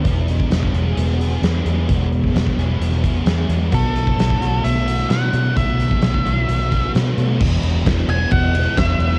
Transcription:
<<
  \new Staff \with { instrumentName = "Lead electric guitar" } { \time 4/4 \key b \mixolydian \tempo 4 = 130 r1 | r1 | a'2 e''4 fis''4 | e''2. r4 |
\key e \major r4. gis''8 fis''4 e''4 | }
  \new Staff \with { instrumentName = "Distorted electric guitar" } { \clef bass \time 4/4 \key b \mixolydian e,8 b,8 gis8 gis'8 b8 gis'8 b8 gis8 | e,8 b,8 gis8 gis'8 b8 gis'8 b8 gis8 | b,8 e8 a8 fis'8 b8 fis'8 b8 a8 | b,8 e8 a8 fis'8 b8 fis'8 b8 a8 |
\key e \major <e, b, e>4 <e, b, e>8 <b, e>4 <b, e>8 <e, b, e>4 | }
  \new Staff \with { instrumentName = "Fingered electric bass" } { \clef bass \time 4/4 \key b \mixolydian e,,4 e,,8 e,,8 e,,4 e,8 e,8 | e,,4 e,,8 e,,8 e,,4 e,8 e,8 | b,,4 b,,8 b,,8 b,,4 b,8 b,8 | b,,4 b,,8 b,,8 b,,4 b,8 b,8 |
\key e \major e,,8 e,,8 e,,8 e,,8 e,,4 e,,8 e,,8 | }
  \new DrumStaff \with { instrumentName = "Drums" } \drummode { \time 4/4 <hh bd>8 hh16 bd16 <hh sn>16 bd16 hh8 hh8 hh8 <hh sn>8 hh8 | <hh bd>8 hh16 <bd sn>16 <hh sn>16 bd16 hh8 hh8 <hh bd>8 <hh sn>8 hh8 | <hh bd>8 hh16 bd16 <hh sn>16 bd16 hh8 hh8 hh8 <hh sn>8 hh8 | <hh bd>8 hh16 bd16 <hh sn>16 bd16 hh8 hh8 <hh bd>8 <hh sn>8 hh8 |
<cymc bd>8 cymr8 <bd cymr sn>16 sn16 cymr8 <bd cymr>8 cymr8 <bd cymr sn>8 cymr8 | }
>>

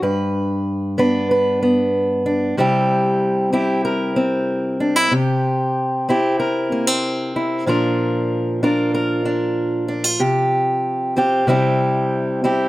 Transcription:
\new Staff \with { instrumentName = "Steel-string acoustic guitar" } { \time 4/4 \key c \mixolydian \tempo 4 = 94 << { b'4. <b d' b'>8 b'8 b4 d'8 | <g c' e' g'>4. <c' e' g'>8 bes'8 c'4 d'16 e'16 | g'4. <c' e' g'>8 bes'8 bes16 c'8. e'8 | <f d' f' bes'>4. <d' f' bes'>8 bes'8 d'4 d'16 f'16 |
g'4. <c' f' g'>8 <g c' e' g'>4. <c' e' g'>8 | } \\ { g,1 | c1 | c1 | bes,1 |
c2 c2 | } >> }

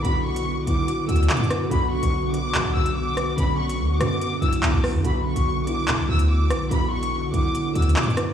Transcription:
<<
  \new Staff \with { instrumentName = "Violin section" } { \time 4/4 \key b \minor \tempo 4 = 144 b''8 cis'''4 d'''4 e'''8 d'''8 r8 | b''8 cis'''4 d'''4 e'''8 d'''4 | b''8 cis'''4 d'''4 e'''8 d'''8 r8 | b''8 cis'''4 d'''4 e'''8 d'''4 |
b''8 cis'''4 d'''4 e'''8 d'''8 r8 | }
  \new Staff \with { instrumentName = "Ambient pad" } { \time 4/4 \key b \minor << { fis'1~ | fis'1~ | fis'1 | fis'1~ |
fis'1 | } \\ { <d b>1~ | <d b>1~ | <d b>1~ | <d b>1~ |
<d b>1 | } >> }
  \new Staff \with { instrumentName = "Tine electric piano" } { \time 4/4 \key b \minor <d b fis'>4. <d b e'>4 <d b fis'>4. | <d b fis'>4. <d b fis'>2 r8 | <d b cis'>4. <d b fis'>4 <d b e'>4. | <d b fis'>4. <d b e'>2 r8 |
<d b fis'>4. <d b e'>4 <d b fis'>4. | }
  \new Staff \with { instrumentName = "808-style bass" } { \clef bass \time 4/4 \key b \minor b,,4. b,,8 r8 d,8 b,16 fis,8. | b,,8. b,,4~ b,,16 fis16 b,,16 b,,4. | b,,4 d,8 fis,4 b,,8 b,,16 b,,8 fis,16 | b,,8. b,,4~ b,,16 d16 b,,16 d,4 ais,,8 |
b,,4. b,,8 r8 d,8 b,16 fis,8. | }
  \new DrumStaff \with { instrumentName = "Drums" } \drummode { \time 4/4 hh8. hh16 r8 hh8 \tuplet 3/2 { hh16 r16 r16 hh16 hh16 hh16 <hc hh>16 hh16 hh16 <hh ss>16 r16 r16 } | hh8. hh16 r8 hh8 <hc hh>8. hh16 r8 <hh ss>8 | hh8. hh16 r8 <hh ss>8 hh8 hh16 hh16 hc8 <hho ss>8 | hh8. hh16 r8 hh8 <hc hh>8. hh16 r8 <hh ss>8 |
hh8. hh16 r8 hh8 \tuplet 3/2 { hh16 r16 r16 hh16 hh16 hh16 <hc hh>16 hh16 hh16 <hh ss>16 r16 r16 } | }
>>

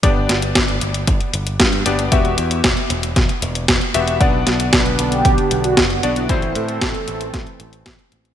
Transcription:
<<
  \new Staff \with { instrumentName = "Analog polysynth" } { \time 4/4 \key g \major \tempo 4 = 115 r1 | r1 | r4 b'8. g'4 fis'4 e'16~ | e'8 a'2. r8 | }
  \new Staff \with { instrumentName = "Electric grand piano" } { \time 4/4 \key g \major <b d' g' d''>2.~ <b d' g' d''>8 <b d' g' d''>8 | <b fis' g' e''>2.~ <b fis' g' e''>8 <b fis' g' e''>8 | <b d' d'' fis''>2.~ <b d' d'' fis''>8 <b d' fis' d''>8 | <a c' e' c''>2.~ <a c' e' c''>8 r8 | }
  \new Staff \with { instrumentName = "Analog synth pad" } { \time 4/4 \key g \major r1 | r1 | <d b d'>1 | <e a c'>1 | }
  \new Staff \with { instrumentName = "Picked electric bass" } { \clef bass \time 4/4 \key g \major g,,8 g,,8 g,,8 g,,8 g,,8 g,,8 g,8 g,,8 | e,,8 e,8 e,,8 e,,8 e,,8 e,,8 e,,8 e,,8 | b,,8 b,,8 b,,8 b,,8 b,,8 b,,8 fis,,8 b,,8 | a,,8 a,8 a,,8 a,,8 a,,8 a,,8 a,,8 a,,8 | }
  \new DrumStaff \with { instrumentName = "Drums" } \drummode { \time 4/4 <hh bd>8 <hh sn>16 hh16 <hh bd sn>16 hh16 hh16 hh16 <hh bd>16 hh16 hh16 hh16 <hh bd sn>16 hh16 hh16 hh16 | <hh bd>16 hh16 hh16 hh16 <hh bd sn>16 hh16 hh16 hh16 <hh bd sn>16 hh16 hh16 hh16 <hh bd sn>16 hh16 hh16 hh16 | <hh bd>8 <hh sn>16 hh16 <hh bd sn>16 hh16 hh16 hh16 <hh bd>16 hh16 hh16 hh16 <hh bd sn>16 hh16 hh16 hh16 | <hh bd>16 hh16 hh16 hh16 <hh bd sn>16 hh16 hh16 hh16 <hh bd sn>16 hh16 hh16 hh16 <hh bd sn>16 hh16 hh16 hh16 | }
>>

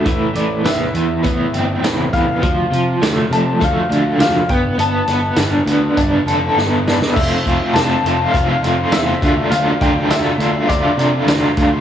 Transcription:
<<
  \new Staff \with { instrumentName = "Upright piano" } { \time 4/4 \key d \dorian \tempo 4 = 102 e''8 d''8 e''2~ e''8 f''8~ | f''4. a''8 f''4 f''8 g''8 | a''2. r4 | e''4 a''4 f''4 e''4 |
f''8 g''8 e''4 d''8 d''4 r8 | }
  \new Staff \with { instrumentName = "Overdriven electric guitar" } { \time 4/4 \key d \dorian e8 e8 b8 e8 b8 c'8 e8 b8 | f8 f8 a8 f8 a8 d'8 f8 b8 | b8 b8 d'8 b8 d'8 a'8 b8 d'8 | <a c' f'>8 <a c' f'>16 <c' f'>16 <a c' f'>8 <a c' f'>16 <c' f'>16 <a c' f'>16 <c' f'>16 <a c' f'>16 <c' f'>16 <a c' f'>8 <a d' f'>16 <d' f'>16 |
<a d' f'>8 <a d' f'>16 <d' f'>16 <a d' f'>8 <a d' f'>16 <d' f'>16 <a d' f'>16 <d' f'>16 <a d' f'>16 <d' f'>16 <a d' f'>8. <d' f'>16 | }
  \new Staff \with { instrumentName = "Picked electric bass" } { \clef bass \time 4/4 \key d \dorian a,,8 a,,8 a,,8 e,8 a,,8 g,,8 a,,4 | d,8 c8 d,8 c8 d,8 d,8 d,8 g,,8 | g,,8 g,,8 g,,8 d,8 g,,8 f,,8 g,,4 | f,,4 f,,8 f,,8 f,,8 f,,8 e,8 d,8 |
d,8 d,8 d,8 d,8 d,8 c8 d,8 d,8 | }
  \new DrumStaff \with { instrumentName = "Drums" } \drummode { \time 4/4 <hh bd>8 hh8 <hh sn tamb>8 hh8 <hh bd>8 hh8 <hh sn tamb>8 <hh bd>8 | <hh bd>8 hh8 <hh sn tamb>8 hh8 <hh bd>8 hh8 <hh sn tamb>8 <hh bd>8 | hh8 <hh sn>8 <hh sn tamb>8 hh8 <hh bd>8 hh8 sn8 sn16 sn16 | <cymc bd>8 <hh bd>8 <hh sn tamb>8 hh8 <hh bd>8 hh8 <hh sn tamb>8 <hh bd>8 |
hh8 <hh bd>8 <hh sn tamb>8 hh8 <hh bd>8 hh8 <hh sn tamb>8 <hh bd>8 | }
>>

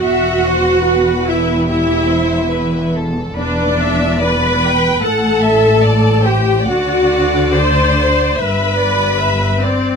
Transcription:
<<
  \new Staff \with { instrumentName = "Violin section" } { \time 4/4 \key e \minor \tempo 4 = 73 fis''4. e''8 e''4. r8 | d''4 b''4 a''4. g''8 | fis''4 c'''4 b''4. c''8 | }
  \new Staff \with { instrumentName = "Violin section" } { \time 4/4 \key e \minor e''8 c''8 b'4 g'8 c''8 b'8 a'8 | b'8 e''8 d''8 g''8 fis''8 e''8 d''8 c''8 | d''2 e''8 d''8 e''8 d''8 | }
  \new Staff \with { instrumentName = "Viola section" } { \time 4/4 \key e \minor fis'4. e'8 e'4. r8 | d'4 b'4 a'4. g'8 | fis'4 c''4 b'4. c'8 | }
  \new Staff \with { instrumentName = "Cello section" } { \clef bass \time 4/4 \key e \minor e,1 | e,2 a,2 | d2 g,2 | }
  \new Staff \with { instrumentName = "Double bass section" } { \clef bass \time 4/4 \key e \minor e,,1 | e,,2 a,,2 | d,2 g,,2 | }
>>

